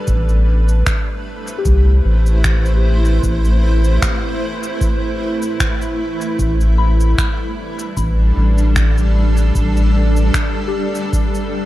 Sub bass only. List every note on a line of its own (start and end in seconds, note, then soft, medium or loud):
0.08 0.83 A1 loud
1.65 2.01 C2 loud
2.05 3.20 A1 medium
3.23 3.99 A1 loud
6.39 7.15 A1 loud
7.97 8.32 A1 loud
8.37 9.52 A1 medium
9.55 10.31 A1 loud